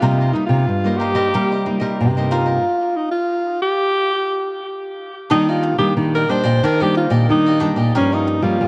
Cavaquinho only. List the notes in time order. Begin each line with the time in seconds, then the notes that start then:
0.02 D#4 A#4 C5 D#5
0.21 A#4 C5 D#5
0.35 muted cavaquinho stroke
0.86 A#4 C5 D#5
1.00 D#4 A#4 C5 D#5
1.15 A#4 C5 D#5
1.34 D#4 A#4 C5 D#5
1.52 A#4 C5 D#5
1.66 muted cavaquinho stroke
1.80 A#4 C5 D#5
2.17 A#4 C5 D#5
2.31 D#4 A#4 C5 D#5
2.46 A#4 C5 D#5
5.30 D4 G4 D5 D#5
5.48 G4 D5 D#5
5.63 muted cavaquinho stroke
6.15 G4 D5 D#5
6.29 D4 G4 D5 D#5
6.44 G4 D5 D#5
6.64 D4 G4 D5 D#5
6.80 G4 D5 D#5
6.95 muted cavaquinho stroke
7.10 G4 D5 D#5
7.46 G4 D5 D#5
7.60 D4 G4 D5 D#5
7.76 G4 D5 D#5
7.95 G4 A#4 C#5 F5
8.12 A#4 C#5 F5
8.27 muted cavaquinho stroke